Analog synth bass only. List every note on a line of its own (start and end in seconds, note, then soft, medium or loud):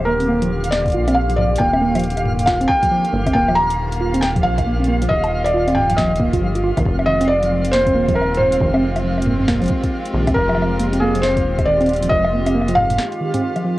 0.00 0.96 D#1 loud
0.94 1.57 A#1 loud
1.60 2.66 D#1 loud
3.13 3.31 G1 medium
3.35 4.46 D#1 loud
4.44 5.07 A#1 loud
5.10 6.35 D#1 loud
6.33 6.72 G1 medium
6.77 6.83 A#1 medium
6.85 7.96 F1 loud
7.95 8.58 D#1 loud
8.61 9.67 F1 loud
10.14 10.32 A#1 medium
10.36 11.47 F1 loud
11.45 12.08 D#1 loud
12.11 12.98 F1 loud